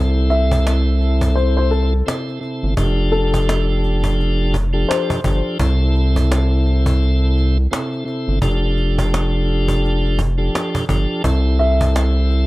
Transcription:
0.00 2.03 C2 loud
0.00 1.93 C3 medium
0.00 1.93 C4 medium
0.00 1.93 E4 medium
0.00 1.94 A4 loud
0.30 1.32 E5 medium
0.30 cajon slap soft
0.52 cajon bass medium
0.67 cajon slap loud
1.01 cajon slap soft
1.21 cajon bass medium
1.35 1.55 C5 medium
1.35 cajon slap medium
1.57 1.70 C5 medium
1.71 2.03 A4 medium
1.71 cajon slap soft
2.06 2.39 C3 medium
2.06 2.39 C4 medium
2.06 2.40 E4 medium
2.06 2.40 A4 medium
2.06 cajon slap loud
2.28 cajon slap soft
2.40 2.74 C3 medium
2.40 2.74 C4 medium
2.40 2.74 E4 medium
2.40 2.74 A4 medium
2.40 cajon slap soft
2.63 2.75 G1 medium
2.77 4.85 F1 loud
2.77 4.56 F3 medium
2.77 4.56 D4 medium
2.77 4.57 G4 medium
2.77 4.57 A4 loud
2.77 cajon bass loud
3.12 4.35 A4 medium
3.12 cajon slap soft
3.34 cajon bass medium
3.49 cajon slap loud
3.84 cajon slap soft
4.04 cajon bass medium
4.20 cajon slap medium
4.54 cajon bass medium
4.73 5.20 F3 medium
4.73 5.20 D4 medium
4.73 5.20 G4 medium
4.73 5.20 A4 loud
4.89 5.20 C5 medium
4.89 cajon slap loud
5.10 cajon bass loud
5.24 5.42 G1 medium
5.24 5.57 F3 medium
5.24 5.58 D4 medium
5.24 5.58 G4 medium
5.24 5.58 A4 medium
5.24 cajon bass loud
5.59 7.67 C2 loud
5.59 7.58 C3 medium
5.59 7.58 C4 medium
5.59 7.58 E4 medium
5.59 7.58 A4 loud
5.59 cajon bass loud
5.95 cajon slap soft
6.16 cajon bass medium
6.32 cajon slap loud
6.66 cajon slap soft
6.86 cajon bass medium
7.03 cajon slap soft
7.38 cajon slap soft
7.71 8.04 C3 medium
7.71 8.04 C4 medium
7.71 8.04 E4 medium
7.71 8.04 A4 medium
7.71 cajon slap loud
7.93 cajon slap soft
8.05 8.39 C3 medium
8.05 8.39 C4 medium
8.05 8.39 E4 medium
8.05 8.39 A4 medium
8.05 cajon slap soft
8.28 8.40 G1 medium
8.42 10.50 F1 loud
8.42 10.21 F3 medium
8.42 10.21 D4 medium
8.42 10.21 G4 medium
8.42 10.21 A4 loud
8.42 cajon bass loud
8.78 cajon slap soft
8.99 cajon bass medium
9.14 cajon slap loud
9.49 cajon slap soft
9.68 cajon bass medium
9.85 cajon slap medium
10.05 cajon slap soft
10.19 cajon bass medium
10.38 10.85 F3 medium
10.38 10.85 D4 medium
10.38 10.85 G4 medium
10.38 10.85 A4 loud
10.55 cajon slap loud
10.75 cajon bass loud
10.89 11.06 G1 medium
10.89 11.22 F3 medium
10.89 11.22 D4 medium
10.89 11.23 G4 medium
10.89 11.23 A4 medium
10.89 cajon bass loud
11.24 12.47 C2 loud
11.24 12.47 C3 medium
11.24 12.47 C4 medium
11.24 12.47 E4 medium
11.24 12.47 A4 loud
11.24 cajon bass loud
11.59 12.47 E5 medium
11.59 cajon slap soft
11.81 cajon bass medium
11.96 cajon slap loud
12.31 cajon slap soft

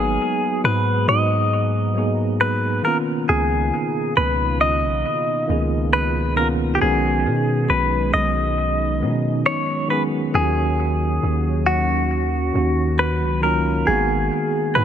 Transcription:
0.00 0.18 G#1 loud
0.00 0.87 F#3 medium
0.00 2.82 G#3 medium
0.00 0.88 A#3 medium
0.00 0.89 B3 medium
0.00 0.89 D#4 medium
0.00 2.82 F#4 medium
0.00 0.61 G#4 medium
0.00 0.90 G#4 medium
0.00 2.82 G#4 medium
0.00 6.78 A#5 medium
0.64 1.06 G#2 loud
0.64 1.08 B4 medium
1.08 2.80 G#2 loud
1.08 2.37 D#5 loud
1.94 2.51 F#3 medium
1.94 2.52 A#3 medium
1.94 2.53 B3 medium
1.94 2.53 D#4 medium
1.99 2.54 G#4 medium
2.41 2.84 B4 medium
2.82 8.54 B2 medium
2.82 6.78 C#3 medium
2.82 4.25 D#3 medium
2.82 4.25 A#3 medium
2.82 4.26 B3 medium
2.82 4.26 C#4 medium
2.82 10.31 D#4 medium
2.82 6.78 F4 medium
2.82 2.97 A#4 medium
2.87 4.27 F4 medium
3.29 3.71 C#2 loud
3.29 4.13 G#4 medium
4.17 4.85 C#2 loud
4.17 4.60 B4 medium
4.61 5.89 D#5 loud
4.83 5.04 B1 medium
5.47 6.78 C#2 loud
5.47 6.05 D#3 medium
5.47 6.05 A#3 medium
5.47 6.06 B3 medium
5.47 6.06 C#4 medium
5.52 6.07 G#4 medium
5.93 6.34 B4 medium
6.35 6.65 D#3 medium
6.35 6.65 A#3 medium
6.35 6.66 B3 medium
6.35 6.66 C#4 medium
6.35 6.47 A#4 medium
6.40 6.67 F4 medium
6.75 6.81 G4 medium
6.79 7.27 B1 loud
6.79 7.93 D#3 medium
6.79 7.94 G#3 medium
6.79 10.31 G#3 medium
6.79 7.94 B3 medium
6.79 7.95 C#4 medium
6.79 7.72 G#4 medium
6.84 7.95 F#4 medium
7.26 7.68 B2 loud
7.70 8.12 B1 loud
7.70 8.13 B4 medium
8.14 9.03 B1 loud
8.14 9.42 D#5 loud
8.58 13.84 F#3 medium
9.00 9.44 B2 loud
9.00 9.58 D#3 medium
9.00 9.58 G#3 medium
9.00 9.59 B3 medium
9.00 9.59 C#4 medium
9.05 9.60 D#4 medium
9.46 9.90 C#5 medium
9.88 10.18 D#3 medium
9.88 10.18 G#3 medium
9.88 10.19 B3 medium
9.88 10.19 C#4 medium
9.88 10.02 B4 medium
9.93 10.20 G#4 medium
10.32 11.19 D#2 loud
10.32 11.46 D#3 medium
10.32 13.84 D#3 medium
10.32 11.47 F#3 medium
10.32 11.47 A#3 medium
10.32 13.84 C#4 medium
10.32 11.48 C#4 medium
10.32 13.84 F#4 medium
10.32 11.63 G#4 medium
10.37 10.42 F4 medium
10.43 11.52 F#4 medium
11.23 12.51 D#2 loud
11.66 13.03 F#4 medium
12.53 13.23 D#2 loud
12.53 13.10 D#3 medium
12.53 13.11 F#3 medium
12.53 13.11 A#3 medium
12.53 13.12 C#4 medium
12.57 13.13 F#4 medium
12.99 13.43 B4 medium
13.21 13.84 C#2 loud
13.41 13.70 D#3 medium
13.41 13.71 F#3 medium
13.41 13.72 A#3 medium
13.41 13.72 C#4 medium
13.41 13.89 A#4 medium
13.46 13.73 F4 medium
13.85 14.30 G#1 loud
13.85 14.85 D#3 medium
13.85 14.85 G#3 medium
13.85 14.85 A#3 medium
13.85 14.85 B3 medium
13.85 14.85 F#4 medium
13.85 14.78 G#4 medium
13.85 14.85 G#4 medium
13.85 14.85 A#5 medium
13.90 14.85 F#4 medium
14.75 14.85 G#2 loud
14.75 14.85 B4 medium
14.75 14.85 G#5 medium

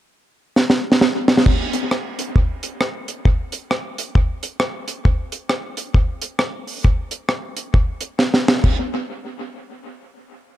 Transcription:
0.56 snare medium
0.70 snare medium
0.92 snare medium
1.01 snare medium
1.28 snare loud
1.38 snare medium
1.46 kick loud
1.46 crash medium
1.73 closed hi-hat medium
1.91 cross-stick loud
2.19 closed hi-hat medium
2.36 kick loud
2.63 closed hi-hat loud
2.81 cross-stick loud
3.08 closed hi-hat medium
3.25 kick medium
3.52 closed hi-hat medium
3.71 cross-stick loud
3.98 closed hi-hat loud
4.15 kick loud
4.43 closed hi-hat loud
4.60 cross-stick loud
4.88 closed hi-hat medium
5.05 kick loud
5.32 closed hi-hat medium
5.49 cross-stick loud
5.77 closed hi-hat medium
5.94 kick loud
6.22 closed hi-hat loud
6.39 cross-stick loud
6.67 open hi-hat medium
6.85 kick loud
6.85 hi-hat pedal medium
7.11 closed hi-hat medium
7.29 cross-stick loud
7.57 closed hi-hat medium
7.74 kick loud
8.01 closed hi-hat medium
8.19 snare medium
8.34 snare medium
8.48 snare medium
8.64 kick loud
8.64 crash medium

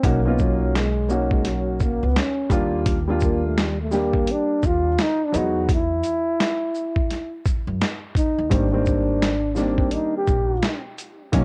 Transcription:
0.03 1.98 B1 loud
0.03 0.18 A#3 medium
0.03 0.29 A#3 medium
0.03 0.18 C#4 medium
0.03 0.19 D#4 medium
0.03 0.19 F#4 medium
0.03 kick loud
0.03 closed hi-hat loud
0.25 0.80 A#3 medium
0.25 0.42 B3 medium
0.25 0.81 C#4 medium
0.25 0.81 D#4 medium
0.25 0.82 F4 medium
0.38 0.77 F#3 medium
0.38 kick medium
0.38 shaker soft
0.75 1.13 G#3 medium
0.75 snare loud
0.75 closed hi-hat medium
1.08 1.35 F#3 medium
1.08 2.05 A#3 medium
1.08 2.06 C#4 medium
1.08 2.06 D#4 medium
1.08 2.06 F#4 medium
1.08 shaker soft
1.31 1.49 G#3 medium
1.31 kick medium
1.45 1.85 F#3 medium
1.45 snare soft
1.45 closed hi-hat medium
1.80 2.07 A#3 medium
1.80 kick medium
1.80 shaker soft
2.03 2.15 C#2 medium
2.03 2.20 B3 medium
2.16 2.53 C#4 medium
2.16 snare loud
2.16 closed hi-hat medium
2.49 4.23 D#2 loud
2.49 2.94 G3 medium
2.49 2.95 A#3 medium
2.49 2.95 D4 medium
2.49 2.96 F4 medium
2.49 kick loud
2.49 closed hi-hat medium
2.49 shaker medium
2.86 kick loud
2.86 closed hi-hat loud
3.07 3.63 G3 medium
3.07 3.63 A#3 medium
3.07 3.63 D4 medium
3.07 3.64 F4 medium
3.20 3.48 A#3 medium
3.20 kick medium
3.20 shaker medium
3.46 3.61 A3 medium
3.58 3.80 G3 medium
3.58 snare loud
3.58 closed hi-hat medium
3.81 3.96 A3 medium
3.91 4.88 G3 medium
3.91 4.88 A#3 medium
3.91 4.33 A#3 medium
3.91 4.88 D4 medium
3.91 4.89 G4 medium
3.91 snare soft
3.91 shaker soft
4.13 kick medium
4.27 closed hi-hat medium
4.32 4.68 D4 loud
4.63 4.95 D#2 medium
4.63 5.03 F4 loud
4.63 kick medium
4.63 shaker soft
4.98 5.26 D#4 loud
4.98 snare loud
4.98 closed hi-hat medium
5.25 5.39 D4 medium
5.32 6.00 E2 medium
5.32 5.68 F#3 medium
5.32 5.69 G#3 medium
5.32 5.69 B3 medium
5.32 5.69 D#4 medium
5.32 closed hi-hat medium
5.32 shaker medium
5.37 5.70 F#4 loud
5.69 kick loud
5.69 closed hi-hat loud
5.74 7.44 E4 loud
6.03 closed hi-hat soft
6.03 shaker soft
6.40 snare loud
6.40 closed hi-hat medium
6.75 shaker soft
6.96 kick medium
7.11 snare soft
7.11 closed hi-hat medium
7.46 kick loud
7.46 shaker soft
7.67 7.79 F#2 medium
7.81 snare loud
7.81 closed hi-hat medium
8.15 8.54 D#4 medium
8.15 kick loud
8.15 closed hi-hat medium
8.15 shaker medium
8.39 8.50 D#2 medium
8.50 9.88 G#1 loud
8.50 8.65 D#3 medium
8.50 8.65 G3 medium
8.50 8.66 A#3 medium
8.50 8.66 C4 medium
8.50 9.59 D4 medium
8.50 kick loud
8.50 closed hi-hat loud
8.72 9.27 D#3 medium
8.72 9.28 G3 medium
8.72 9.28 A#3 medium
8.72 9.28 C4 medium
8.86 kick medium
8.86 shaker soft
9.22 snare loud
9.22 closed hi-hat medium
9.55 10.52 D#3 medium
9.55 10.52 G3 medium
9.55 10.53 A#3 medium
9.55 9.94 C4 medium
9.55 10.53 D4 medium
9.55 snare soft
9.55 shaker soft
9.78 kick medium
9.91 10.16 D#4 loud
9.91 closed hi-hat medium
10.17 10.83 G4 medium
10.27 10.60 A#1 medium
10.27 kick medium
10.27 shaker soft
10.62 snare loud
10.62 closed hi-hat medium
10.98 closed hi-hat medium
10.98 shaker medium
11.32 11.44 B1 loud
11.32 11.44 D#3 medium
11.32 11.44 F#3 medium
11.32 11.44 A#3 medium
11.32 11.44 C#4 medium
11.32 kick loud
11.32 closed hi-hat loud

